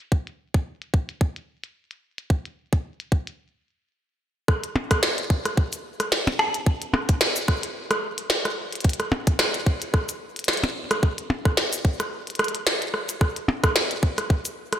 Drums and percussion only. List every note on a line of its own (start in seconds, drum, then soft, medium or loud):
0.12 kick loud
0.27 closed hi-hat soft
0.54 kick loud
0.54 closed hi-hat medium
0.82 closed hi-hat soft
0.94 kick loud
1.09 closed hi-hat medium
1.21 kick loud
1.36 closed hi-hat soft
1.64 closed hi-hat medium
1.91 closed hi-hat soft
2.18 closed hi-hat medium
2.30 kick loud
2.45 closed hi-hat soft
2.73 kick loud
2.73 closed hi-hat medium
3.00 closed hi-hat soft
3.12 kick loud
3.27 closed hi-hat medium
4.48 kick loud
4.48 cross-stick medium
4.64 closed hi-hat soft
4.76 percussion blips medium
4.91 kick loud
4.91 cross-stick medium
4.91 closed hi-hat medium
5.03 snare loud
5.18 closed hi-hat medium
5.30 kick loud
5.45 cross-stick medium
5.45 closed hi-hat medium
5.57 kick loud
5.73 closed hi-hat medium
5.73 shaker medium
6.00 cross-stick medium
6.00 closed hi-hat medium
6.12 snare loud
6.27 closed hi-hat soft
6.27 percussion blips medium
6.39 cross-stick medium
6.54 closed hi-hat medium
6.66 kick loud
6.82 closed hi-hat soft
6.94 cross-stick medium
6.94 percussion blips medium
7.09 kick loud
7.09 closed hi-hat medium
7.21 snare loud
7.36 shaker medium
7.48 kick loud
7.48 cross-stick medium
7.63 closed hi-hat medium
7.91 cross-stick medium
7.91 closed hi-hat medium
8.18 closed hi-hat medium
8.30 snare loud
8.45 cross-stick medium
8.45 closed hi-hat soft
8.73 closed hi-hat soft
8.75 closed hi-hat soft
8.81 closed hi-hat soft
8.84 kick loud
8.84 closed hi-hat soft
8.89 closed hi-hat medium
8.93 closed hi-hat medium
9.00 cross-stick medium
9.00 closed hi-hat soft
9.12 percussion blips medium
9.27 kick loud
9.27 closed hi-hat medium
9.39 cross-stick medium
9.39 snare loud
9.54 closed hi-hat medium
9.66 kick loud
9.82 closed hi-hat medium
9.94 kick loud
9.94 cross-stick medium
10.09 closed hi-hat medium
10.09 shaker medium
10.36 closed hi-hat soft
10.39 closed hi-hat soft
10.44 cross-stick soft
10.44 snare loud
10.44 closed hi-hat soft
10.48 closed hi-hat soft
10.53 closed hi-hat medium
10.57 closed hi-hat medium
10.64 closed hi-hat soft
10.64 percussion blips medium
10.91 cross-stick medium
10.91 closed hi-hat medium
11.03 kick loud
11.18 closed hi-hat soft
11.30 percussion blips medium
11.45 kick loud
11.45 cross-stick soft
11.57 snare loud
11.73 closed hi-hat medium
11.73 shaker medium
11.85 kick loud
12.00 cross-stick soft
12.00 closed hi-hat medium
12.27 closed hi-hat soft
12.30 closed hi-hat soft
12.35 closed hi-hat soft
12.39 cross-stick medium
12.39 closed hi-hat soft
12.44 closed hi-hat soft
12.48 closed hi-hat soft
12.55 closed hi-hat medium
12.67 snare loud
12.82 closed hi-hat soft
12.94 cross-stick soft
13.09 closed hi-hat medium
13.09 shaker medium
13.21 kick loud
13.21 cross-stick medium
13.36 closed hi-hat soft
13.48 percussion blips medium
13.64 kick loud
13.64 cross-stick medium
13.64 closed hi-hat medium
13.76 snare loud
13.91 closed hi-hat medium
14.03 kick loud
14.18 cross-stick medium
14.18 closed hi-hat medium
14.30 kick loud
14.45 closed hi-hat medium
14.45 shaker medium
14.73 cross-stick medium
14.73 closed hi-hat medium